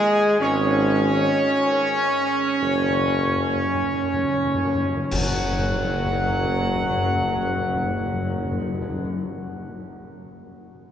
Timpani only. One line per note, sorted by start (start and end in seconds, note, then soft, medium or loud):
2.62 2.71 F#2 medium
2.72 2.79 F#2 medium
2.81 2.88 F#2 medium
2.89 2.98 F#2 medium
2.99 3.07 F#2 medium
3.08 3.16 F#2 medium
3.18 3.26 F#2 medium
3.27 3.35 F#2 medium
3.37 3.45 F#2 medium
3.46 3.54 F#2 medium
3.55 3.64 F#2 medium
3.65 3.74 F#2 medium
3.75 3.82 F#2 medium
3.84 3.93 F#2 medium
3.94 4.02 F#2 medium
4.03 4.13 F#2 loud
4.14 4.22 F#2 loud
4.23 4.32 F#2 loud
4.33 4.43 F#2 loud
4.44 4.53 F#2 loud
4.54 4.63 F#2 loud
4.64 4.74 F#2 loud
4.75 4.83 F#2 loud
4.85 4.93 F#2 loud
4.95 5.04 F#2 loud
5.12 5.20 F#2 loud
5.20 5.28 F#2 loud
5.28 5.36 F#2 loud
5.36 5.44 F#2 loud
5.44 5.51 F#2 loud
5.51 5.59 F#2 loud
5.59 5.66 F#2 loud
5.67 5.74 F#2 loud
5.74 5.82 F#2 loud
5.82 5.89 F#2 loud
5.89 5.97 F#2 loud
5.98 6.05 F#2 medium
6.06 6.13 F#2 loud
6.13 6.21 F#2 medium
6.21 6.29 F#2 loud
6.29 6.36 F#2 medium
6.36 6.44 F#2 loud
6.44 6.51 F#2 loud
6.52 6.59 F#2 loud
6.59 6.67 F#2 loud
6.67 6.75 F#2 medium
6.75 6.83 F#2 loud
6.83 6.90 F#2 loud
6.90 6.97 F#2 loud
6.97 7.05 F#2 loud
7.06 7.13 F#2 loud
7.13 7.21 F#2 loud
7.21 7.28 F#2 loud
7.28 7.36 F#2 loud
7.36 7.44 F#2 medium
7.44 7.52 F#2 loud
7.52 7.59 F#2 medium
7.60 7.67 F#2 loud
7.68 7.75 F#2 loud
7.75 7.82 F#2 loud
7.83 7.90 F#2 loud
7.91 7.98 F#2 loud
7.98 8.06 F#2 medium
8.06 8.13 F#2 loud
8.13 8.21 F#2 medium
8.22 8.29 F#2 loud
8.29 8.36 F#2 medium
8.37 8.44 F#2 loud
8.44 8.52 F#2 loud
8.52 8.59 F#2 loud
8.60 8.67 F#2 loud
8.67 8.74 F#2 loud
8.74 8.82 F#2 loud
8.82 8.90 F#2 loud
8.90 8.97 F#2 loud
8.97 9.04 F#2 loud
9.04 9.12 F#2 loud